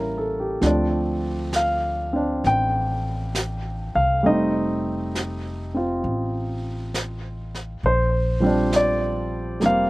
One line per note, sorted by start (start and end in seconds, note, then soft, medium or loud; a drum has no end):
0.00 0.57 A1 medium
0.00 0.61 G3 soft
0.00 0.62 A#3 soft
0.00 0.62 C#4 soft
0.00 0.63 E4 soft
0.00 0.32 A#4 soft
0.00 0.12 C#5 soft
0.00 0.26 A5 medium
0.18 0.45 A4 soft
0.40 0.71 G4 soft
0.61 2.41 D2 medium
0.61 4.26 F3 soft
0.61 4.22 A3 soft
0.61 2.11 C4 soft
0.61 2.14 D4 soft
0.61 brush sweep soft
0.61 snare soft
0.67 1.51 D5 medium
1.53 2.48 F5 medium
1.53 snare soft
1.53 hi-hat pedal soft
2.13 4.24 C4 soft
2.13 4.26 D4 soft
2.44 3.90 A1 medium
2.44 3.32 G5 medium
2.44 brush sweep soft
2.44 snare soft
3.35 snare soft
3.35 hi-hat pedal soft
3.95 4.24 C2 medium
3.95 4.27 F5 medium
4.23 6.01 F1 medium
4.23 7.81 G3 soft
4.23 7.82 A3 soft
4.23 5.73 C4 soft
4.23 6.01 D#5 medium
4.23 brush sweep soft
4.27 7.83 D#4 medium
5.15 snare soft
5.15 hi-hat pedal soft
5.74 7.83 C4 soft
5.74 7.84 F4 soft
6.04 7.78 A1 medium
6.04 brush sweep soft
6.94 snare soft
6.94 hi-hat pedal soft
7.55 snare soft
7.83 9.57 A#1 medium
7.83 8.76 C5 medium
7.83 brush sweep soft
8.40 9.90 F3 soft
8.40 9.58 G3 soft
8.40 9.61 C4 soft
8.46 9.90 D4 medium
8.72 9.59 D5 medium
8.72 snare soft
8.72 hi-hat pedal soft
9.60 9.90 F1 medium
9.60 9.90 G3 soft
9.60 9.90 A#3 soft
9.60 9.90 C4 soft
9.60 brush sweep soft
9.60 snare soft
9.66 9.90 F5 medium